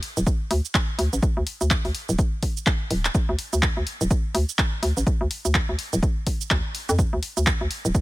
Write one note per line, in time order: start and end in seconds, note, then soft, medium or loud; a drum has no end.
0.03 open hi-hat medium
0.03 open hi-hat loud
0.17 0.24 D1 loud
0.17 shaker medium
0.27 kick loud
0.27 shaker soft
0.51 0.61 D2 loud
0.51 open hi-hat medium
0.51 open hi-hat loud
0.65 shaker medium
0.75 kick loud
0.75 clap loud
0.75 shaker soft
0.99 1.09 D2 loud
0.99 open hi-hat medium
0.99 open hi-hat loud
1.13 1.20 A1 medium
1.13 shaker medium
1.23 kick loud
1.23 shaker soft
1.37 1.44 D2 loud
1.47 open hi-hat medium
1.61 1.77 D2 medium
1.61 shaker soft
1.71 kick loud
1.71 clap loud
1.71 shaker soft
1.85 1.92 D2 medium
1.85 open hi-hat soft
1.95 open hi-hat medium
1.95 open hi-hat loud
2.09 2.16 D1 loud
2.09 shaker medium
2.19 kick loud
2.19 shaker soft
2.43 kick medium
2.43 open hi-hat medium
2.43 open hi-hat loud
2.57 shaker medium
2.67 kick loud
2.67 clap medium
2.67 shaker soft
2.91 3.09 D1 loud
2.91 open hi-hat medium
2.91 open hi-hat loud
3.05 clap medium
3.05 shaker medium
3.15 kick loud
3.15 shaker soft
3.29 3.36 D2 loud
3.39 open hi-hat medium
3.53 3.69 D2 medium
3.53 shaker medium
3.63 kick loud
3.63 clap medium
3.63 shaker soft
3.77 3.84 D2 medium
3.87 open hi-hat medium
4.01 4.08 D1 loud
4.01 shaker medium
4.11 kick loud
4.11 shaker soft
4.35 4.45 D2 loud
4.35 open hi-hat medium
4.35 open hi-hat loud
4.49 shaker medium
4.59 kick loud
4.59 clap medium
4.59 shaker soft
4.83 4.93 D2 loud
4.83 open hi-hat medium
4.83 open hi-hat loud
4.97 5.04 A1 medium
4.97 shaker medium
5.07 kick loud
5.07 shaker soft
5.21 5.28 D2 loud
5.31 open hi-hat medium
5.45 5.61 D2 medium
5.45 shaker medium
5.55 kick loud
5.55 clap medium
5.55 shaker soft
5.69 5.76 D2 medium
5.79 open hi-hat medium
5.93 6.00 D1 loud
5.93 shaker medium
6.03 kick loud
6.03 shaker soft
6.27 kick medium
6.27 open hi-hat medium
6.41 shaker medium
6.51 6.61 D2 medium
6.51 kick loud
6.51 clap medium
6.51 shaker soft
6.75 open hi-hat medium
6.89 7.05 F2 loud
6.89 shaker medium
6.99 kick loud
6.99 shaker soft
7.13 7.20 D2 loud
7.23 open hi-hat medium
7.37 7.53 D2 medium
7.37 shaker medium
7.47 kick loud
7.47 clap medium
7.47 shaker soft
7.61 7.68 D2 medium
7.71 open hi-hat medium
7.85 7.92 D1 loud
7.85 shaker medium
7.95 kick loud
7.95 shaker soft